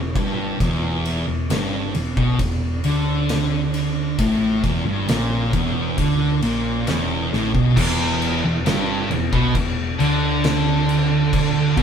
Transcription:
Already playing: E1 E2
0.15 G1 G2, kick, ride
0.60 E1 E2, kick, ride
1.06 ride
1.27 E1 E2
1.49 G1 G2, snare, ride
1.94 E1 E2, ride
2.17 B1 B2, kick
2.39 E1 E2, kick, ride
2.84 D2 D3, ride
3.29 snare, ride
3.74 ride
4.19 A1 A2, kick, ride
4.64 E1 E2, kick, ride
4.86 G1 G2
5.09 A#1 A#2, snare, ride
5.53 E1 E2, kick, ride
5.98 D2 D3, kick, ride
6.42 A#1 A#2, ride
6.87 E1 E2, snare, ride
7.32 A1 A2, snare
7.54 B1 B2, kick
7.77 E1 E2, kick, crash
8.22 crash
8.44 E1 E2
8.66 G1 G2, snare, crash
9.11 E1 E2, crash
9.33 B1 B2, kick
9.55 E2, kick, crash
10.00 D2 D3, crash
10.44 snare, crash
10.89 crash
11.33 kick, crash
11.77 B1 B2, kick, crash

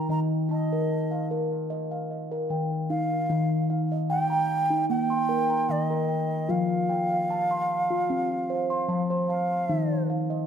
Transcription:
0.09 D#3 D#4 D#5 A#5
0.49 D#4 D#5 A5
0.73 A#4
1.11 F5
1.31 A#4
1.70 D#5
1.91 F5
2.31 A#4
2.50 D#3 G5
2.90 D#4 F5
3.29 D#3 D#4
3.70 F5
3.92 D#5
4.10 G5
4.30 A#5
4.70 D#4
4.90 A#3 G5
5.10 C6
5.29 A#4
5.50 A#5
5.69 D#3 D5 G5
5.82 D#5
5.90 A#4
6.09 G5
6.49 F3 F4 F5
6.89 G5
7.10 F5
7.30 A5
7.51 C6
7.90 F4
8.10 C4
8.50 C5
8.70 C6
8.89 F3 A5
9.10 C5
9.28 F5 A5
9.69 D#3 D#4
10.10 F5
10.30 D#5

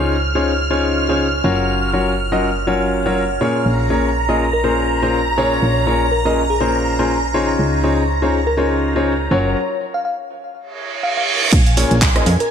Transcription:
Already playing: C#2 C#3 D#4 F4 G#4 C5 C#5 F6
0.35 C#3 D#4 F4 G#4 C5 C#5
0.71 C#3 D#4 F4 G#4 C5 C#5
1.09 C#3 D#4 F4 G#4 C5 C#5
1.44 F#1 F#3 C#4 F4 F#4 A#4 C#5
1.93 F#3 C#4 F4 F#4 A#4 C#5
2.32 F#3 C#4 F4 F#4 A#4 D#5
2.67 F#3 C#4 F4 F#4 A#4 C#5
3.06 F#3 C#4 F4 F#4 A#4 C#5
3.41 A#2 C#4 F4 G#4 A#4 C#5
3.66 A#1 A#5
3.90 A#2 C#4 F4 G#4 A#4 C#5
4.29 A#2 C#4 F4 G#4 A#4 D#5
4.53 A#4
4.64 A#2 C#4 F4 G#4 A#4 C5
5.02 A#2 C#4 F4 G#4 A#4 C5
5.38 A#2 C#4 F4 G#4 A#4 C#5
5.62 A#1
5.87 A#2 C#4 F4 G#4 A#4 C#5
6.11 A#4
6.25 A#2 C#4 F4 G#4 A#4 D#5
6.50 G#4
6.61 A#2 C#4 F4 G#4 A#4 C5
6.99 A#2 C#4 F4 G#4 A#4 C5
7.34 C#3 D#4 F4 G#4 C5 C#5
7.59 C#2
7.84 C#3 D#4 F4 G#4 C5 C#5
8.22 C#3 D#4 F4 G#4 C5 C#5
8.47 A#4
8.57 C#3 D#4 F4 G#4 A#4 C5 C#5
8.96 C#3 D#4 F4 G#4 C5 C#5
9.31 F#1 F#3 C#4 F4 F#4 A#4 C#5
9.94 F5
10.05 F5
10.54 reverse cymbal
11.03 F5
11.17 F5
11.52 A#1 G#5, kick, closed hi-hat, crash
11.66 closed hi-hat
11.77 A#2 C#4 F4 G#4 A#4 C#5, open hi-hat
11.91 A#1, closed hi-hat
12.02 kick, clap, closed hi-hat
12.16 A#2 C#4 F4 G#4 A#4 D#5, cross-stick, closed hi-hat
12.26 F2, open hi-hat
12.40 A#4, closed hi-hat

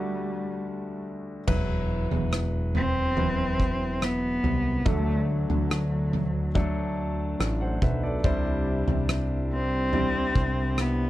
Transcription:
Already playing: D2 D3 G3 A3 D4 F#4 A4
1.48 E1 F#3 E4 B4, kick, floor tom, crash
2.11 E1, floor tom
2.33 cross-stick
2.75 C4, floor tom
3.17 F#3 E4 B4, floor tom
3.60 kick
4.02 B3, cross-stick
4.44 C2, floor tom
4.86 D2 D3 F#3 A3 D4 A4, kick, floor tom
5.31 F#3
5.50 D2, floor tom
5.71 cross-stick
6.13 floor tom
6.55 F#3 A3 D4 A4, kick, floor tom
7.40 A1, cross-stick
7.61 C5 F#5
7.82 B1 B4 E5, kick, floor tom
8.03 A4 D5
8.24 C2 C3 G3 D4 E4 C5, kick, floor tom
8.87 C2, floor tom
9.09 cross-stick
9.53 C4
9.93 G3 D4 E4 D5, floor tom
10.35 C2, kick
10.78 B3, cross-stick

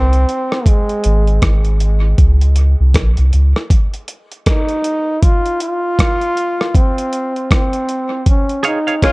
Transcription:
Already playing: C2 C4
0.13 closed hi-hat
0.29 closed hi-hat
0.52 cross-stick
0.66 G#3, kick, closed hi-hat
0.89 closed hi-hat
1.04 G#1, closed hi-hat
1.27 closed hi-hat
1.42 G#1, kick, cross-stick, closed hi-hat
1.65 closed hi-hat
1.80 closed hi-hat
2.18 C#2, kick, closed hi-hat
2.41 closed hi-hat
2.56 closed hi-hat
2.80 C2
2.94 A#1, kick, cross-stick, closed hi-hat
3.17 C2, closed hi-hat
3.33 C#2, closed hi-hat
3.56 cross-stick
3.70 kick, closed hi-hat
3.94 closed hi-hat
4.08 closed hi-hat
4.32 closed hi-hat
4.46 D#4, kick, cross-stick, closed hi-hat
4.69 closed hi-hat
4.84 closed hi-hat
5.23 F4, kick, closed hi-hat
5.46 closed hi-hat
5.60 F4, closed hi-hat
5.99 kick, cross-stick, closed hi-hat
6.21 closed hi-hat
6.37 closed hi-hat
6.61 cross-stick
6.75 C4, kick, closed hi-hat
6.98 closed hi-hat
7.13 closed hi-hat
7.36 closed hi-hat
7.51 C4, kick, cross-stick, closed hi-hat
7.73 closed hi-hat
7.89 closed hi-hat
8.26 C#4, kick, closed hi-hat
8.49 closed hi-hat
8.63 D#4 G#4 C#5 F5, closed hi-hat
8.87 G#4 C#5 F5, closed hi-hat
9.02 G#3 C#4 F4, kick, cross-stick, closed hi-hat

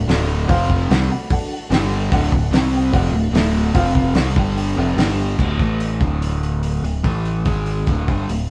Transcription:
Already playing: A3 D4 F#4
0.07 D1 D2 A2 D3 F#4 A4 D5, snare, open hi-hat
0.47 F1 F2 C3 F3 C4 F4 C5 F5, kick, open hi-hat
0.52 F3
0.70 kick
0.89 C2 C3 G3 A3 C4 D4 F#4 A4 D5 F#5, snare, open hi-hat
1.10 A4 D5 F#5 B5
1.30 A4 D5 F#5 A5, kick, open hi-hat
1.53 F#5
1.68 G1 G2 D3 G3 D4 G4, open hi-hat
1.72 G4 D5 G5, snare
2.09 D1 D2 A3 D4 F#4 A4, kick, open hi-hat
2.13 A2 D3 D5 F#5
2.32 D1 D2 A2, kick
2.51 C2 C3 G3 C4 G4 C5, snare, open hi-hat
2.56 G5
2.73 G4 C5 G5
2.92 F1 F2 C3 F3 A3 D4 F#4 A4 D5 F#5, kick, open hi-hat
3.12 D1 D2 A2
3.31 D1 D2 A2 A4 D5, open hi-hat
3.35 D3 E5, snare
3.74 F1 F2 C3 F3 C4 F4 C5 F5, kick, open hi-hat
3.95 kick
4.14 C2 C3 G3 C4 A4 D5 F#5, snare, open hi-hat
4.36 G1 G2 D3 G3 D4 G4 D5 G5 A5, kick
4.57 G5, open hi-hat
4.76 F1 F2 C3 F3 A4 D5 E5 F#5
4.96 G1 G2 D3 G3 D4 G4 D5 G5, snare, open hi-hat
5.38 D1 D2 A2 D3, kick, crash
5.59 A1 A2 E3 A3, kick, open hi-hat
5.80 open hi-hat
6.00 D1 D2 A2 D3, kick, open hi-hat
6.22 open hi-hat
6.43 open hi-hat
6.63 open hi-hat
6.82 D1 D2 A2, open hi-hat
7.04 A1 A2 E3 A3, kick, open hi-hat
7.25 open hi-hat
7.45 G#1 G#2 D#3 G#3, kick, open hi-hat
7.66 open hi-hat
7.87 D1 D2 A2 D3, kick, open hi-hat
8.08 G1 G2 D3 G3, kick, open hi-hat
8.28 D1 D2 A2, open hi-hat

